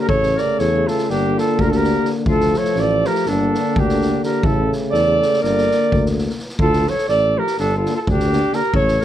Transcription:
Already playing: D3 A#3
0.00 A#4
0.08 A1 C#3 A3 A4 C#5, kick
0.23 snare
0.37 A#4 D5, snare
0.59 E2 A4 C#5, snare
0.87 F4 A4, snare
0.98 snare
1.09 G1 D3 A#3 D4 G4, snare
1.36 F4 A4, snare
1.59 D2 G4 A#4, kick
1.65 F4
1.70 G4 A4, snare
1.77 A#4
1.84 snare
2.05 snare
2.26 D2 F3 A3 F4, kick
2.30 A4
2.40 snare
2.54 A4 C#5, snare
2.65 snare
2.75 A1 A4, snare
2.80 D5
3.05 G4 A#4, snare
3.15 snare
3.26 G1 D3 A#3 D4 A4, snare
3.54 snare
3.76 D2 D4 G4, kick
3.89 snare
4.01 snare
4.23 G4 A#4, snare
4.42 A1 C#3 A3 E4 A4, kick
4.72 snare
4.92 E2 A4 D5, snare
5.22 snare
5.33 snare
5.41 G1 D3 A#3 A#4 D5, snare
5.58 snare
5.71 snare
5.92 D2, kick
6.06 snare
6.18 snare
6.29 snare
6.39 snare
6.49 snare
6.59 D2 F4 A4, kick
6.73 snare
6.86 F3 A3 A4 C#5, snare
6.98 snare
7.08 A1 A4 D5, snare
7.36 F3 A3 G4 A#4
7.47 snare
7.57 G1 D4 A4, snare
7.76 F4 A4
7.86 D3 A#3, snare
7.94 F4 A4
8.01 F4 A4
8.07 D2 D4 G4, kick
8.20 snare
8.31 D3 A#3, snare
8.52 D3 A#3 G4 A#4, snare
8.74 A1 A4 C#5, kick
8.88 snare
9.01 C#3 A3 A#4, snare

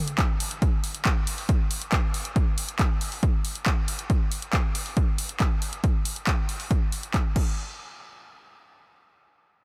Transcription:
0.08 closed hi-hat
0.18 kick, clap, closed hi-hat
0.40 open hi-hat
0.51 closed hi-hat
0.62 kick, closed hi-hat
0.84 open hi-hat
0.95 closed hi-hat
1.05 kick, clap, closed hi-hat
1.27 open hi-hat
1.38 open hi-hat
1.49 kick, closed hi-hat
1.71 open hi-hat
1.82 closed hi-hat
1.92 kick, clap, closed hi-hat
2.14 open hi-hat
2.25 closed hi-hat
2.36 kick, closed hi-hat
2.58 open hi-hat
2.69 closed hi-hat
2.79 kick, clap, closed hi-hat
3.01 open hi-hat
3.12 open hi-hat
3.23 kick, closed hi-hat
3.45 open hi-hat
3.55 closed hi-hat
3.66 kick, clap, closed hi-hat
3.88 open hi-hat
3.99 closed hi-hat
4.10 kick, closed hi-hat
4.32 open hi-hat
4.42 closed hi-hat
4.53 kick, clap, closed hi-hat
4.75 open hi-hat
4.86 open hi-hat
4.97 kick, closed hi-hat
5.18 open hi-hat
5.29 closed hi-hat
5.40 kick, clap, closed hi-hat
5.62 open hi-hat
5.73 closed hi-hat
5.84 kick, closed hi-hat
6.05 open hi-hat
6.16 closed hi-hat
6.27 kick, clap, closed hi-hat
6.49 open hi-hat
6.60 open hi-hat
6.71 kick, closed hi-hat
6.92 open hi-hat
7.03 closed hi-hat
7.14 kick, clap, closed hi-hat
7.36 kick, crash

